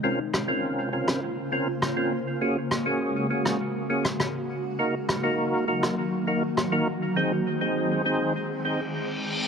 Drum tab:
SD |--r----r----r---|--r----r---rr---|--r----r----r---|----------------|